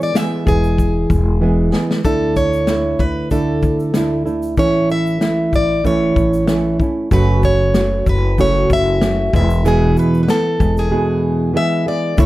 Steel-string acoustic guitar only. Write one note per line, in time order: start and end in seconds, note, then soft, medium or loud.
0.03 0.17 D5 medium
0.17 0.48 E5 loud
0.48 1.70 G#4 medium
2.05 2.34 A4 medium
2.37 3.02 C#5 medium
3.00 3.31 B4 medium
3.32 4.23 A4 medium
4.59 4.91 C#5 medium
4.92 5.55 E5 loud
5.56 5.84 D5 medium
5.87 6.77 C#5 medium
7.13 7.44 B4 medium
7.45 8.09 C#5 medium
8.09 8.40 B4 medium
8.41 8.72 C#5 loud
8.73 9.35 E5 loud
9.36 9.67 E5 medium
9.68 9.99 G#4 medium
9.99 10.22 B4 medium
10.23 10.29 B4 medium
10.30 10.79 A4 medium
10.79 11.52 G#4 medium
11.57 11.88 E5 loud
11.88 12.17 D5 medium
12.20 12.26 C#5 loud